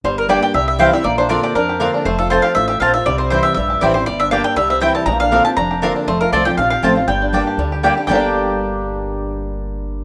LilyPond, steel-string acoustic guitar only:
\new Staff \with { instrumentName = "Steel-string acoustic guitar" } { \time 4/4 \key g \dorian \tempo 4 = 239 << { r4 <g bes d' g'>4 r4 <e g c' e'>8 <c' e'>8 | r4 <d bes c' f'>4 r4 <d bes c' f'>4 | r4 <f a c' f'>4 r2 | r4 <e g c' e'>4 r4 <e g c' e'>8 <c' e'>8 |
r4 <g bes d' g'>4 r4 <e g c' e'>4 | r4 <d bes c' f'>8 <c' f'>8 r4 <d bes c' f'>4 | r4 <f a c' f'>8 <c' f'>8 r4 <f a c' f'>8 <c' f'>8 | r4 <g bes d' g'>4 r4 <g bes d' g'>8 <d' g'>8 |
<g, d g bes d' g'>1~ | <g, d g bes d' g'>1 | } \\ { g,2 c2 | bes,2 f,2 | f,2 a,4 bes,4 | c2 g,2 |
g,2 c2 | bes,2 f,2 | f,2 c2 | g,2 d2 |
r1 | r1 | } >> }